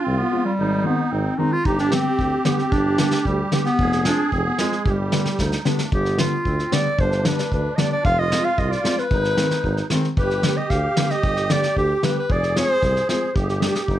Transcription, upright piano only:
0.31 0.45 F3 medium
0.31 0.45 G#3 medium
0.31 0.46 C4 medium
0.83 0.98 D#3 medium
0.83 0.98 G#3 medium
0.83 0.99 C4 medium
1.38 1.52 D#3 medium
1.38 1.52 G#3 medium
1.38 1.53 C4 medium
1.92 2.05 D3 soft
1.92 2.06 G3 medium
1.92 2.06 B3 medium
2.45 2.59 D3 medium
2.45 2.59 G3 medium
2.45 2.59 B3 medium
2.99 3.12 D3 medium
2.99 3.13 G3 medium
2.99 3.13 B3 medium
3.52 3.65 D3 medium
3.52 3.66 G3 medium
3.52 3.66 B3 medium
4.05 4.19 F3 medium
4.05 4.19 G#3 soft
4.05 4.19 C4 medium
4.58 4.72 F3 medium
4.58 4.72 G#3 medium
4.58 4.73 C4 medium
5.12 5.26 D3 medium
5.12 5.26 G3 medium
5.12 5.26 B3 medium
5.65 5.79 D3 medium
5.65 5.79 G3 medium
5.65 5.79 B3 medium
6.19 6.32 D3 medium
6.19 6.33 G3 medium
6.19 6.33 B3 medium
6.72 6.85 D3 medium
6.72 6.86 G3 medium
6.72 6.86 B3 medium
7.25 7.39 D3 medium
7.25 7.39 G3 medium
7.25 7.39 B3 medium
7.78 7.92 D3 medium
7.78 7.92 G3 medium
7.78 7.92 B3 medium
8.31 8.45 F3 medium
8.31 8.45 G#3 medium
8.31 8.45 C4 medium
8.83 8.97 F3 medium
8.83 8.98 G#3 medium
8.83 8.98 C4 medium
9.37 9.51 D#3 medium
9.37 9.51 G#3 medium
9.37 9.52 C4 medium
9.90 10.04 D#3 medium
9.90 10.04 G#3 medium
9.90 10.05 C4 medium
10.44 10.57 D3 medium
10.44 10.57 G3 medium
10.44 10.58 B3 medium
10.96 11.10 D3 medium
10.96 11.11 G3 medium
10.96 11.11 B3 medium
11.50 11.63 D3 medium
11.50 11.63 G3 soft
11.50 11.64 B3 medium
12.03 12.16 D3 medium
12.03 12.17 G3 medium
12.03 12.17 B3 medium
12.55 12.69 F3 medium
12.55 12.69 G#3 medium
12.55 12.69 C4 medium
13.08 13.22 F3 medium
13.08 13.22 G#3 medium
13.08 13.22 C4 medium
13.61 13.75 G3 medium
13.61 13.75 B3 soft
13.61 13.75 D4 medium

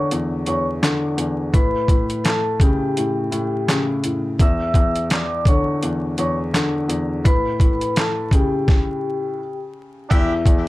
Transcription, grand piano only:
0.00 0.12 E2 medium
0.00 0.81 D3 medium
0.12 0.46 E2 medium
0.47 1.16 E2 medium
0.82 1.54 D3 medium
1.17 1.53 E2 medium
1.53 1.88 A2 medium
1.90 2.96 A2 medium
2.61 3.67 C#3 medium
2.98 3.30 A2 medium
3.32 4.03 A2 medium
3.68 4.39 C#3 medium
4.05 4.40 A2 medium
4.40 4.73 E2 medium
4.75 5.81 E2 medium
5.49 6.52 D3 medium
5.83 6.17 E2 medium
6.18 6.87 E2 medium
6.53 7.25 D3 medium
6.88 7.24 E2 medium
7.24 7.59 A2 medium
7.60 9.39 A2 medium
8.32 10.11 C#3 medium
10.12 10.44 E2 medium
10.46 10.68 E2 medium

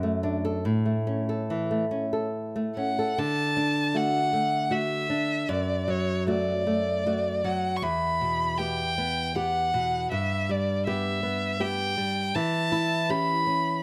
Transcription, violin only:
2.77 3.20 F#5 medium
3.19 3.98 A5 medium
3.96 4.73 F#5 medium
4.72 5.50 E5 medium
5.48 5.91 D5 medium
5.90 6.28 C#5 medium
6.29 7.46 D5 medium
7.45 7.78 F#5 medium
7.76 7.84 C#6 medium
7.82 8.60 B5 medium
8.58 9.36 G5 medium
9.35 10.11 F#5 medium
10.11 10.52 E5 medium
10.50 10.86 D5 medium
10.86 11.62 E5 medium
11.61 12.37 G5 medium
12.35 13.12 A5 medium
13.10 13.83 B5 medium

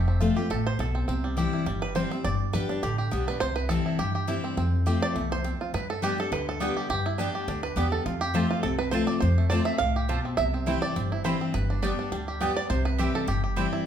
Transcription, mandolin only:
6.02 6.12 B3 medium
6.02 6.13 G4 medium
6.02 6.13 D5 medium
6.02 6.13 G5 loud
6.60 6.70 B3 medium
6.60 6.71 G4 medium
6.60 6.71 D5 loud
6.60 6.71 G5 loud
7.18 7.28 B3 medium
7.18 7.28 G4 medium
7.18 7.29 D5 loud
7.18 7.29 G5 loud
7.76 7.86 B3 medium
7.76 7.87 G4 loud
7.76 7.87 D5 medium
7.76 7.87 G5 loud
8.34 8.44 C4 medium
8.34 8.45 F4 loud
8.34 8.45 C5 loud
8.34 8.45 A5 loud
8.92 9.03 C4 medium
8.92 9.03 F4 medium
8.92 9.03 C5 loud
8.92 9.03 A5 loud
9.51 9.61 C4 medium
9.51 9.61 F4 loud
9.51 9.61 C5 loud
9.51 9.61 A5 medium
10.08 10.19 C4 medium
10.08 10.19 F4 medium
10.08 10.19 C5 medium
10.08 10.19 A5 medium
10.67 10.77 C4 medium
10.67 10.77 E4 medium
10.67 10.77 C5 loud
10.67 10.77 G5 loud
11.24 11.35 C4 medium
11.24 11.35 E4 medium
11.24 11.35 C5 loud
11.24 11.35 G5 loud
11.82 11.92 B3 medium
11.82 11.93 G4 medium
11.82 11.93 D5 medium
11.82 11.93 G5 medium
12.40 12.51 B3 medium
12.40 12.51 G4 loud
12.40 12.51 D5 loud
12.40 12.51 G5 loud
12.98 13.08 C4 loud
12.98 13.09 E4 medium
12.98 13.09 C5 loud
12.98 13.09 G5 loud
13.56 13.66 C4 medium
13.56 13.67 E4 loud
13.56 13.67 C5 loud
13.56 13.67 G5 loud

